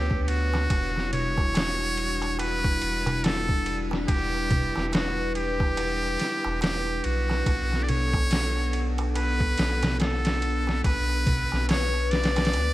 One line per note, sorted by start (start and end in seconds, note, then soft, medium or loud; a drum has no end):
0.00 0.68 D2 loud
0.00 0.67 B3 medium
0.00 0.67 D4 medium
0.00 0.23 G4 medium
0.00 0.67 B4 medium
0.00 0.67 C#5 medium
0.10 kick medium
0.10 darbuka tek soft
0.23 0.30 G4 medium
0.28 1.12 F#4 loud
0.28 ride medium
0.54 snare soft
0.54 darbuka tek medium
0.70 2.79 E1 loud
0.70 7.43 G3 medium
0.70 7.43 D4 medium
0.70 7.43 E4 medium
0.70 4.05 F#4 medium
0.70 kick loud
0.70 ride medium
0.70 darbuka tek medium
0.96 snare soft
0.96 darbuka tek soft
1.13 2.36 C#5 loud
1.13 ride medium
1.13 darbuka dum medium
1.37 kick medium
1.37 darbuka tek medium
1.54 snare loud
1.54 ride medium
1.54 darbuka tek medium
1.80 darbuka tek soft
1.97 ride medium
2.22 ride soft
2.22 darbuka tek medium
2.39 3.26 B4 loud
2.39 ride medium
2.39 darbuka tek medium
2.64 kick loud
2.64 darbuka tek soft
2.82 4.06 E1 medium
2.82 ride medium
3.06 ride soft
3.06 darbuka tek medium
3.06 darbuka dum medium
3.24 3.85 A4 loud
3.24 snare loud
3.24 ride medium
3.24 darbuka tek medium
3.49 kick medium
3.49 darbuka tek soft
3.66 ride medium
3.91 snare medium
3.91 darbuka tek medium
4.08 4.71 E1 loud
4.08 4.88 G4 loud
4.08 7.43 B4 medium
4.08 kick loud
4.08 ride medium
4.08 darbuka tek medium
4.34 darbuka tek soft
4.51 kick loud
4.51 ride medium
4.51 darbuka dum medium
4.76 6.17 E1 medium
4.76 snare soft
4.76 darbuka tek medium
4.88 4.95 G4 medium
4.92 5.35 F#4 medium
4.92 snare loud
4.92 ride medium
4.92 darbuka tek medium
5.17 darbuka tek soft
5.35 6.58 G4 loud
5.35 ride medium
5.60 kick medium
5.60 darbuka tek medium
5.77 ride medium
5.77 darbuka tek medium
6.03 darbuka tek soft
6.20 snare soft
6.20 ride medium
6.44 7.01 E1 loud
6.44 darbuka tek medium
6.61 7.06 G4 loud
6.61 snare loud
6.61 ride medium
6.61 darbuka tek medium
6.86 darbuka tek soft
7.04 7.43 B1 medium
7.04 7.85 F#4 loud
7.04 ride medium
7.29 snare soft
7.29 darbuka tek medium
7.46 9.55 B1 loud
7.46 12.73 B3 medium
7.46 12.73 D4 medium
7.46 10.81 A4 medium
7.46 kick loud
7.46 ride medium
7.46 darbuka tek medium
7.72 snare soft
7.72 darbuka tek soft
7.83 7.90 D5 medium
7.89 8.91 C#5 loud
7.89 ride medium
7.89 darbuka dum medium
8.14 kick loud
8.14 darbuka tek medium
8.31 snare loud
8.31 ride medium
8.31 darbuka tek medium
8.57 darbuka tek soft
8.73 ride medium
8.98 ride soft
8.98 darbuka tek medium
9.15 9.96 B4 loud
9.15 ride medium
9.15 darbuka tek medium
9.40 kick medium
9.40 darbuka tek soft
9.58 10.82 B1 medium
9.58 snare loud
9.58 ride medium
9.83 snare loud
9.83 ride medium
9.83 darbuka tek medium
9.83 darbuka dum medium
10.00 10.81 A4 loud
10.00 snare loud
10.00 ride medium
10.00 darbuka tek medium
10.25 snare loud
10.25 ride medium
10.25 darbuka tek soft
10.42 ride medium
10.67 snare medium
10.67 darbuka tek medium
10.84 11.47 B1 loud
10.84 11.65 B4 loud
10.84 12.73 B4 medium
10.84 kick loud
10.84 ride medium
10.84 darbuka tek medium
11.09 darbuka tek soft
11.27 kick loud
11.27 ride medium
11.27 darbuka dum medium
11.52 12.56 B1 medium
11.52 snare soft
11.52 darbuka tek medium
11.69 12.12 C#5 loud
11.69 snare loud
11.69 ride medium
11.69 darbuka tek medium
11.94 darbuka tek soft
12.11 12.73 D5 loud
12.11 snare medium
12.11 ride medium
12.24 snare medium
12.24 ride medium
12.36 snare medium
12.36 ride medium
12.36 darbuka tek medium
12.45 snare medium
12.45 ride medium
12.53 12.73 D2 loud
12.53 ride medium
12.53 darbuka tek medium